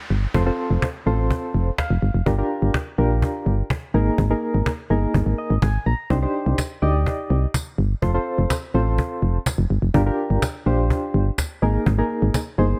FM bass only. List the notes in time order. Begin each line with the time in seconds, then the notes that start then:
0.10 G1
0.34 F1
0.70 F1
1.07 A1
1.54 F1
1.90 F1
2.02 G1
2.14 F1
2.26 G1
2.62 G1
2.98 A#1
3.46 G1
3.94 G#1
4.18 G#1
4.54 G#1
4.90 G1
5.14 G1
5.26 G#1
5.50 G#1
5.62 G#1
5.86 A#1
6.10 C2
6.46 C2
6.82 D2
7.30 C2
7.78 G1
8.02 F1
8.38 F1
8.74 A1
9.22 F1
9.58 F1
9.70 G1
9.82 F1
9.94 G1
10.30 G1
10.66 A#1
11.14 G1
11.62 G#1
11.86 G#1
12.22 G#1
12.58 G1